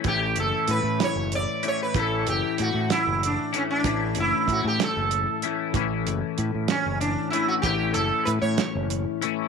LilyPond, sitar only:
\new Staff \with { instrumentName = "Sitar" } { \time 6/8 \key a \mixolydian \tempo 4. = 63 g'8 a'8 b'8 cis''8 d''8 cis''16 b'16 | a'8 g'8 fis'8 e'8 d'8 cis'16 d'16~ | d'8 e'8 fis'16 g'16 a'4.~ | a'4 r8 cis'8 d'8 e'16 fis'16 |
g'8 a'8 b'16 cis''8 r4 r16 | }